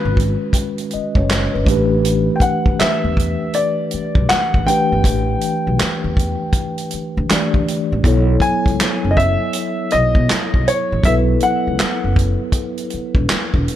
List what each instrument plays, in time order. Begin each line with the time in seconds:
Already playing: tine electric piano D#3 G#3 C#4 F#4 B4, grand piano B4
0.05 upright bass G#1
0.17 kick, closed hi-hat
0.53 kick, closed hi-hat
0.78 closed hi-hat
0.91 tine electric piano D#5, muted upright bass stroke, closed hi-hat
1.15 upright bass F#1, tine electric piano C#5, kick
1.30 snare, clap, closed hi-hat
1.54 upright bass F#1, tine electric piano B4
1.66 upright bass A1, tine electric piano E3 A3 D4 G4, kick, closed hi-hat
1.71 tine electric piano B4
2.05 closed hi-hat
2.36 grand piano G5
2.40 grand piano F#5, kick, closed hi-hat
2.66 upright bass D2, kick
2.79 grand piano E5, muted upright bass stroke, snare, clap, closed hi-hat
3.04 upright bass E2
3.17 kick, closed hi-hat
3.53 grand piano D5, closed hi-hat
3.91 muted upright bass stroke, closed hi-hat
4.15 upright bass B1, kick
4.29 grand piano F#5, muted upright bass stroke, snare, clap, closed hi-hat
4.54 upright bass A1, kick
4.66 tine electric piano E3 A3 D4 G4, grand piano G5, closed hi-hat
4.70 tine electric piano B4
4.92 upright bass G1
5.04 upright bass A1, kick, closed hi-hat
5.41 closed hi-hat
5.67 upright bass B1
5.79 muted upright bass stroke, snare, clap, closed hi-hat
6.04 upright bass E2
6.17 kick, closed hi-hat
6.53 kick, closed hi-hat
6.78 closed hi-hat
6.91 muted upright bass stroke, closed hi-hat
7.17 upright bass D2
7.30 tine electric piano E3 A3 D4 G4 D5, muted upright bass stroke, snare, clap, closed hi-hat
7.54 upright bass D2, kick
7.68 closed hi-hat
7.92 upright bass A1
8.03 upright bass B1, tine electric piano F#3 B3 E4 A4, kick, closed hi-hat
8.08 tine electric piano C#5
8.40 grand piano G#5, kick, closed hi-hat
8.66 upright bass C#2, kick, closed hi-hat
8.80 muted upright bass stroke, snare, clap, closed hi-hat
9.04 upright bass F#1
9.11 grand piano D#5
9.17 grand piano E5, kick, closed hi-hat
9.53 closed hi-hat
9.91 upright bass B1, grand piano D#5, closed hi-hat
10.15 upright bass B2, kick
10.30 muted upright bass stroke, snare, clap, closed hi-hat
10.54 upright bass B1, kick
10.68 grand piano C#5, closed hi-hat
10.92 upright bass A1
11.03 upright bass B1, tine electric piano F#3 B3 E4 A4, grand piano E5, kick, closed hi-hat
11.08 tine electric piano B4
11.40 grand piano F#5, closed hi-hat
11.67 upright bass C#2
11.79 muted upright bass stroke, snare, clap, closed hi-hat
12.04 upright bass F#1
12.16 kick, closed hi-hat
12.52 kick, closed hi-hat
12.78 closed hi-hat
12.90 muted upright bass stroke, closed hi-hat
13.15 upright bass E1, kick
13.30 muted upright bass stroke, snare, clap, closed hi-hat
13.54 upright bass E1, kick
13.68 closed hi-hat